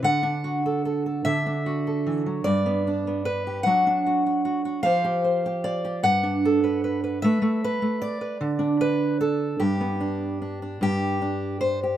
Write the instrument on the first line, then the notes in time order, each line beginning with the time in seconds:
steel-string acoustic guitar
0.03 D3 F#5
0.23 D4
0.44 F#4
0.66 A4
0.85 A4
1.06 A4
1.25 D3 E5
1.46 D4
1.66 F#4
1.87 A4
2.06 E3
2.26 F#3
2.44 G2 D5
2.66 B3
2.87 D4
3.07 B3
3.25 B4
3.47 G4
3.63 F#3 D4 F#5
3.67 F#4
3.87 D4
4.06 F#4
4.26 F#4
4.45 F#4
4.65 F#4
4.83 F3 G4 C5 F5
5.04 G4
5.24 C5
5.46 G4
5.64 D5
5.85 G4
6.03 G2 F#5
6.23 D4
6.45 A4
6.64 B4
6.84 B4
7.04 B4
7.22 A3 B4 E5
7.42 A3
7.64 B4
7.82 A3
8.02 D5
8.21 B4
8.41 D3
8.59 D4
8.81 B4
9.21 A4
9.60 G2 G4
9.81 B3
10.01 D4
10.42 D4
10.62 D4
10.81 G2 G4
11.22 D4
11.61 C5
11.83 G4